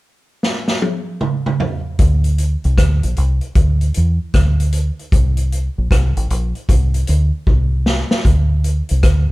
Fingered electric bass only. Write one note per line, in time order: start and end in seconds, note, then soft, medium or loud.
2.00 2.55 D2 loud
2.65 2.76 C2 medium
2.78 3.00 D2 medium
3.04 3.15 A#1 medium
3.18 3.39 C2 medium
3.56 3.89 D2 medium
3.97 4.18 E2 medium
4.35 4.89 D2 medium
5.13 5.68 C2 medium
5.78 5.89 A#1 medium
5.91 6.12 C2 medium
6.17 6.28 A1 medium
6.31 6.52 A#1 medium
6.70 7.03 C2 medium
7.09 7.30 D2 medium
7.48 8.02 C2 medium
8.26 8.81 D2 medium
8.91 9.02 C2 medium
9.04 9.25 D2 medium